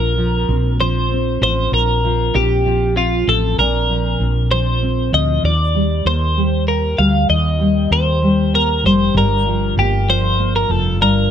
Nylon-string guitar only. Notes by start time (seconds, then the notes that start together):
Already playing: F3 C4
0.18 F3
0.49 C4
0.80 F3
1.12 C4
1.42 F3
2.04 F3
2.35 C4
2.65 F3
2.96 C4
3.27 F3
3.59 A#2
3.90 F3
4.21 C4
4.51 F3
4.82 C4
5.12 F3
5.75 G3
6.06 A#3
6.37 G3
6.68 A#3
6.98 G3
7.29 D#3
7.59 G3
7.91 A#3
8.22 G3
8.53 A#3
8.84 G3
9.15 G2
9.47 F3
9.78 A#3
10.08 F3
10.39 A#3
10.69 F3
11.00 G2